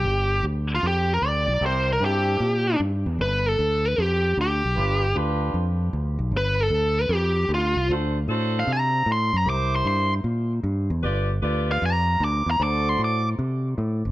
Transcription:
X:1
M:4/4
L:1/8
Q:"Swing" 1/4=153
K:C
V:1 name="Lead electric guitar"
G2 z F G _B d2 | c _B G4 z2 | B A2 B G2 G2- | G2 z6 |
B A2 B G2 F2 | z3 f _b2 c' b | d' c' c' z4 z | z3 f _b2 d' b |
d' c' d' z4 z |]
V:2 name="Horn section"
z8 | [CEG_B] z [CEGA]2 z4 | z8 | [DFGB] z [DFGB]2 z4 |
z8 | [D^FAc] z [DFAc]2 z4 | [EG_Bc]3 z4 z | [FGBd] z [FGBd]2 z4 |
[^FAcd]3 z4 z |]
V:3 name="Fingered electric bass" clef=bass
G,,,2 D,,2 F,,2 D,, B,,, | C,,2 G,,2 _B,,2 G,, E,, | G,,,2 D,,2 F,,2 D,, B,,, | G,,,2 D,,2 F,,2 D,, B,,, |
G,,,2 D,,2 F,,2 D,, C,, | D,,2 A,,2 C,2 A,, ^F,, | C,,2 G,,2 _B,,2 G,, E,, | G,,,2 D,,2 F,,2 D,, E,, |
D,,2 A,,2 C,2 A,, ^F,,, |]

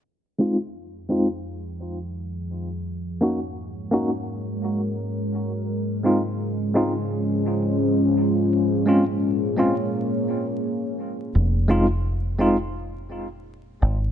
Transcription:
X:1
M:4/4
L:1/8
Q:"Swing 16ths" 1/4=85
K:Fphr
V:1 name="Ambient pad"
[F,EA]8 | [A,GBd]8 | [A,DFc]8 | [B,Ad]8 |
z8 |]
V:2 name="Tine electric piano"
z [A,CEF] z [A,CEF] z4 | z [B,DEG] z [B,DEG] z4 | z [A,CEF] z [A,CEF] z4 | z [A,CDF] z [A,CDF] z4 |
z [A,CEF] z [A,CEF] z4 |]
V:3 name="Fingered electric bass" clef=bass
z8 | z8 | z8 | z8 |
F,,,6- F,,, A,,, |]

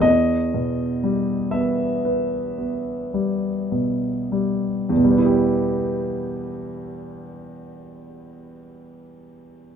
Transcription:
X:1
M:9/8
L:1/8
Q:3/8=37
K:Em
V:1 name="Grand piano"
^d3 e4- e z | [E,,B,,G,B,EG]8- [E,,B,,G,B,EG] |]
V:2 name="Grand piano" clef=bass
E,, B,, G, B, B B, G, B,, G, | z8 z |]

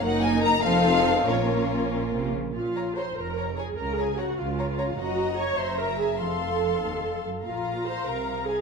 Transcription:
X:1
M:6/8
L:1/8
Q:3/8=97
K:Bbm
V:1 name="Violin section"
g a b f3 | d3 z3 | f2 c' b2 a | b a g f3 |
g2 d' c' b a | =a4- a z | f2 c' b2 a |]
V:2 name="Violin section"
[EB]3 [F=A]3 | [FB]4- [FB] z | z [db] [db] z [db] [db] | z [db] [db] z [db] [db] |
[eb]3 [_fb]3 | [fc']4- [fc'] z | [fb]6 |]
V:3 name="Viola section"
[B,E]3 [CE]3 | [B,D]4- [B,D] z | F2 c B2 A | B A G F3 |
G2 d c B A | =A4- A z | F2 c B2 A |]
V:4 name="Cello section" clef=bass
G,,3 F,,3 | B,,3 B,, C, D, | B,,3 F,,3 | D,3 D,3 |
G,,3 G,,3 | F,,3 E,, F,, G,, | B,,3 C,3 |]
V:5 name="Double bass section" clef=bass
G,,,3 F,,,3 | B,,,4- B,,, z | B,,,3 F,,,3 | D,,3 D,,3 |
G,,,3 G,,,3 | F,,,4- F,,, z | B,,,3 C,,3 |]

